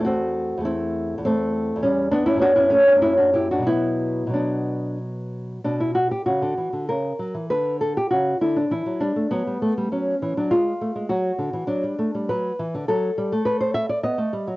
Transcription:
0.00 0.56 E2 medium
0.00 0.59 A3 medium
0.05 0.62 C4 medium
0.05 0.63 F#4 medium
0.57 1.17 E2 medium
0.57 1.21 A3 soft
0.65 1.22 C4 medium
0.65 1.23 E4 medium
1.18 1.74 E2 medium
1.25 1.80 A3 medium
1.25 1.81 C4 medium
1.76 2.34 E2 medium
1.82 2.11 G3 medium
1.82 2.11 C#4 medium
2.11 2.26 B3 medium
2.11 2.26 D4 loud
2.26 2.41 C#4 medium
2.26 2.41 E4 medium
2.34 2.94 F#2 medium
2.34 2.96 F#3 medium
2.39 2.72 B3 medium
2.39 2.56 D4 medium
2.39 2.55 F#4 loud
2.56 2.69 C#4 medium
2.56 2.71 E4 medium
2.70 2.86 A3 medium
2.70 2.86 C#4 loud
2.88 3.00 B3 medium
2.88 3.03 D4 medium
2.95 3.62 F#2 medium
2.95 3.61 F#3 medium
3.00 3.64 A#3 soft
3.00 3.18 C#4 medium
3.00 3.17 E4 loud
3.17 3.34 D4 medium
3.17 3.33 F#4 medium
3.33 3.50 E4 medium
3.33 3.50 G4 medium
3.51 3.66 D4 medium
3.51 3.67 F#4 medium
3.59 4.25 B2 medium
3.59 4.28 F#3 soft
3.67 4.30 B3 medium
3.67 4.31 E4 medium
4.27 5.58 B2 medium
4.27 5.59 F#3 soft
4.33 4.97 B3 soft
4.33 4.97 D4 medium
5.64 6.10 B2 medium
5.64 5.80 D4 medium
5.80 5.94 E4 medium
5.95 6.11 F#4 medium
6.11 6.25 G4 medium
6.26 6.41 C#3 soft
6.26 6.86 F#4 medium
6.42 6.57 D3 soft
6.58 6.72 E3 medium
6.73 6.88 D3 soft
6.89 7.11 C#3 soft
6.89 7.48 A#4 medium
7.19 7.34 F#3 soft
7.34 7.49 E3 soft
7.50 7.95 D3 medium
7.50 7.80 B4 medium
7.81 7.96 A4 medium
7.97 8.10 G4 medium
8.11 8.33 C#3 medium
8.11 8.40 F#4 medium
8.41 8.64 D3 medium
8.41 8.57 E4 medium
8.56 8.72 D4 medium
8.71 8.86 E3 medium
8.71 9.00 E4 medium
8.86 9.01 F#3 soft
9.01 9.16 G3 medium
9.01 9.30 D4 medium
9.16 9.31 A3 medium
9.31 9.46 F#3 medium
9.31 9.89 B3 medium
9.47 9.62 G3 medium
9.62 9.76 A3 medium
9.77 9.92 G3 medium
9.92 10.14 F#3 soft
9.92 10.35 C#4 medium
10.22 10.36 E3 medium
10.37 10.51 F#3 medium
10.37 10.52 D4 medium
10.51 10.72 G#3 medium
10.51 11.07 F4 medium
10.81 10.95 A3 medium
10.96 11.09 G#3 medium
11.09 11.31 F#3 medium
11.09 11.66 F#4 medium
11.38 11.52 D3 medium
11.53 11.67 E3 medium
11.67 11.82 F#3 medium
11.67 12.27 D4 medium
11.83 11.98 G3 medium
11.99 12.14 A3 medium
12.14 12.29 G3 medium
12.29 12.51 F#3 medium
12.29 12.86 B4 medium
12.59 12.73 E3 medium
12.74 12.88 D3 medium
12.88 13.10 F#3 medium
12.88 13.44 A4 medium
13.18 13.31 G3 medium
13.32 13.84 A3 medium
13.45 13.60 B4 medium
13.60 13.74 C5 medium
13.74 13.89 E5 loud
13.89 14.03 D5 medium
14.04 14.17 B3 medium
14.04 14.56 D#5 medium
14.18 14.32 A3 medium
14.33 14.47 G3 medium
14.48 14.56 F#3 medium

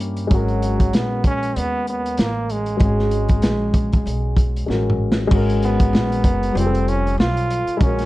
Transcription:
0.00 0.28 G2 medium
0.00 0.26 A#3 medium
0.00 0.28 C#4 medium
0.00 0.29 E4 medium
0.00 0.30 G4 medium
0.00 closed hi-hat medium
0.17 closed hi-hat medium
0.27 0.90 G#1 loud
0.27 2.75 G#3 medium
0.27 2.76 C#4 medium
0.27 kick loud
0.27 closed hi-hat medium
0.33 0.97 F#3 medium
0.33 2.78 F#4 medium
0.33 2.79 A#4 medium
0.48 closed hi-hat soft
0.62 closed hi-hat medium
0.80 kick medium
0.80 closed hi-hat medium
0.93 1.53 A#1 medium
0.93 1.26 B3 medium
0.93 snare loud
0.93 closed hi-hat medium
1.24 1.59 C#4 loud
1.24 kick medium
1.24 closed hi-hat medium
1.43 closed hi-hat soft
1.56 2.15 D#2 medium
1.56 1.88 B3 loud
1.56 closed hi-hat medium
1.87 2.22 B3 medium
1.87 closed hi-hat medium
2.06 closed hi-hat medium
2.17 2.78 A1 medium
2.17 2.54 A#3 loud
2.17 snare medium
2.17 closed hi-hat medium
2.50 4.70 G#3 medium
2.50 closed hi-hat medium
2.66 closed hi-hat soft
2.77 3.40 G#1 loud
2.77 4.63 G#3 medium
2.77 4.64 C#4 medium
2.77 kick loud
2.77 closed hi-hat medium
2.82 4.65 F#4 medium
2.82 4.67 G#4 medium
2.99 snare soft
3.11 closed hi-hat medium
3.29 kick medium
3.29 closed hi-hat medium
3.42 4.02 A#1 medium
3.42 snare loud
3.42 closed hi-hat medium
3.74 kick medium
3.74 closed hi-hat medium
3.92 kick medium
3.92 closed hi-hat soft
4.06 4.65 B1 medium
4.06 closed hi-hat medium
4.37 kick medium
4.37 closed hi-hat medium
4.56 closed hi-hat medium
4.66 5.28 A1 medium
4.66 5.26 G#3 medium
4.66 5.29 C#4 medium
4.66 5.31 F#4 medium
4.66 5.32 A#4 medium
4.66 snare medium
4.90 mid tom medium
5.12 snare loud
5.27 5.90 G#1 loud
5.27 6.51 G#3 medium
5.27 6.53 C#4 medium
5.27 kick loud
5.32 6.54 F#4 medium
5.32 6.55 A#4 medium
5.32 crash medium
5.50 closed hi-hat medium
5.62 6.60 B3 medium
5.62 closed hi-hat medium
5.80 kick medium
5.80 closed hi-hat medium
5.93 6.23 A#1 loud
5.93 snare loud
6.12 closed hi-hat medium
6.24 6.54 F#1 medium
6.24 kick medium
6.24 closed hi-hat medium
6.43 closed hi-hat soft
6.52 7.15 F1 loud
6.52 7.76 G3 medium
6.52 7.78 C5 medium
6.57 6.90 C4 loud
6.57 7.79 F4 medium
6.57 6.65 G#4 medium
6.57 closed hi-hat medium
6.66 7.84 A4 medium
6.75 closed hi-hat medium
6.88 7.19 C#4 medium
6.88 closed hi-hat medium
7.07 closed hi-hat medium
7.18 7.65 B1 medium
7.18 7.84 F4 loud
7.18 snare medium
7.37 closed hi-hat soft
7.50 closed hi-hat medium
7.67 muted upright bass stroke soft
7.67 closed hi-hat medium
7.77 8.06 A#1 loud
7.77 8.06 G#3 medium
7.77 8.06 C#4 medium
7.77 kick loud
7.77 closed hi-hat medium
7.82 8.06 C#4 loud
7.82 8.06 F#4 medium
7.82 8.06 A#4 medium
7.99 snare soft
7.99 closed hi-hat medium

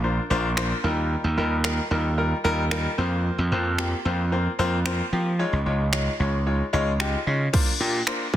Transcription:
0.00 0.18 A#1 loud
0.00 0.21 A#3 medium
0.00 0.21 D4 medium
0.00 0.21 F4 medium
0.04 0.21 C5 medium
0.30 0.72 A#1 medium
0.30 0.48 A#3 loud
0.30 0.48 D4 loud
0.30 0.48 F4 loud
0.30 0.48 C5 loud
0.57 0.74 A#3 loud
0.57 0.74 D4 loud
0.57 0.75 F4 medium
0.57 0.75 C5 loud
0.57 finger snap loud
0.83 1.15 D#2 medium
0.83 1.27 G3 medium
0.83 1.27 D#4 medium
0.83 1.27 F4 medium
0.83 1.27 A#4 medium
1.24 1.34 D#2 medium
1.37 1.79 D#2 medium
1.37 1.55 G3 medium
1.37 1.55 D#4 medium
1.37 1.55 F4 medium
1.37 1.55 A#4 medium
1.64 1.81 G3 medium
1.64 1.82 D#4 medium
1.64 1.82 F4 medium
1.64 1.82 A#4 medium
1.64 finger snap loud
1.91 2.32 D#2 loud
1.91 2.08 G3 medium
1.91 2.08 D#4 medium
1.91 2.08 F4 medium
1.91 2.08 A#4 medium
2.17 2.35 G3 medium
2.17 2.35 D#4 medium
2.17 2.35 F4 medium
2.17 2.35 A#4 medium
2.44 2.86 D#2 medium
2.44 2.62 G3 loud
2.44 2.62 D#4 loud
2.44 2.62 F4 loud
2.44 2.62 A#4 loud
2.71 2.89 G3 loud
2.71 2.89 D#4 loud
2.71 2.89 F4 loud
2.71 2.89 A#4 loud
2.71 finger snap loud
2.98 3.29 F2 medium
2.98 3.41 A#3 medium
2.98 3.41 C4 medium
2.98 3.41 F4 medium
2.98 3.41 C5 loud
3.38 3.49 F2 medium
3.51 3.93 F2 medium
3.51 3.69 A#3 medium
3.51 3.69 C4 medium
3.51 3.69 F4 medium
3.51 3.69 C5 medium
3.78 3.96 A#3 medium
3.78 3.96 C4 medium
3.78 3.96 F4 medium
3.78 3.96 G4 loud
3.78 finger snap loud
4.05 4.47 F2 loud
4.05 4.23 A#3 medium
4.05 4.23 C4 medium
4.05 4.23 F4 medium
4.05 4.23 C5 medium
4.32 4.49 A#3 medium
4.32 4.49 C4 medium
4.32 4.50 F4 medium
4.32 4.50 C5 medium
4.59 5.00 F2 medium
4.59 4.76 A#3 loud
4.59 4.76 C4 loud
4.59 4.76 F4 loud
4.59 4.76 C5 loud
4.86 5.03 A#3 loud
4.86 5.03 C4 loud
4.86 5.03 F4 loud
4.86 5.03 C5 loud
4.86 finger snap loud
5.12 5.44 F3 medium
5.12 5.30 A#3 medium
5.12 5.30 C4 medium
5.12 5.30 F4 medium
5.12 5.30 G4 medium
5.39 5.57 G#3 loud
5.39 5.57 D#4 medium
5.39 5.57 F4 medium
5.39 5.57 C#5 loud
5.53 5.63 C#2 medium
5.66 6.07 C#2 medium
5.66 5.83 G#3 medium
5.66 5.83 D#4 medium
5.66 5.83 F4 medium
5.66 5.84 C#5 medium
5.92 6.10 G#3 medium
5.92 6.10 D#4 medium
5.92 6.10 F4 medium
5.92 6.10 C#5 medium
5.92 finger snap loud
6.19 6.61 C#2 medium
6.19 6.37 G#3 medium
6.19 6.37 D#4 medium
6.19 6.37 F4 medium
6.19 6.37 C#5 medium
6.46 6.64 G#3 medium
6.46 6.64 D#4 medium
6.46 6.64 F4 medium
6.46 6.64 C#5 medium
6.73 7.15 C#2 medium
6.73 6.90 G#3 loud
6.73 6.91 D#4 loud
6.73 6.91 F4 loud
6.73 6.91 C#5 loud
7.00 7.17 G#3 loud
7.00 7.17 D#4 medium
7.00 7.17 F4 loud
7.00 7.17 G4 loud
7.00 finger snap loud
7.26 7.47 C#3 medium
7.26 7.44 G#3 medium
7.26 7.44 D#4 medium
7.26 7.44 F4 medium
7.26 7.44 C#5 medium
7.53 7.71 A#3 loud
7.53 7.71 D4 loud
7.53 7.71 F4 medium
7.53 7.71 C5 loud
7.53 kick loud
7.53 crash medium
7.80 8.01 A#2 medium
7.80 7.98 A#3 medium
7.80 7.98 D4 medium
7.80 7.98 F4 medium
7.80 7.98 G4 medium
8.07 8.24 A#3 medium
8.07 8.24 D4 medium
8.07 8.25 F4 medium
8.07 8.25 C5 medium
8.07 finger snap loud

